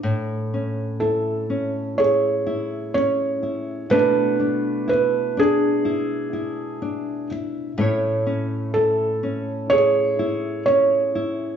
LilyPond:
<<
  \new Staff \with { instrumentName = "Felt piano" } { \time 4/4 \key a \major \tempo 4 = 62 << { r4 a'4 cis''4 cis''4 | b'4 b'8 gis'2 r8 | r4 a'4 cis''4 cis''4 | } \\ { r2 gis'2 | d'4. d'2 r8 | r2 gis'2 | } >> }
  \new Staff \with { instrumentName = "Nylon-string guitar" } { \time 4/4 \key a \major << { e'8 cis'8 e'8 cis'8 e'8 e'8 cis'8 e'8 | <a d' e'>8 d'8 e'8 d'8 e'8 e'8 d'8 e'8 | <a cis' e' cis''>8 cis'8 e'8 cis'8 e'8 e'8 cis'8 e'8 | } \\ { a,1 | b,1 | a,1 | } >> }
>>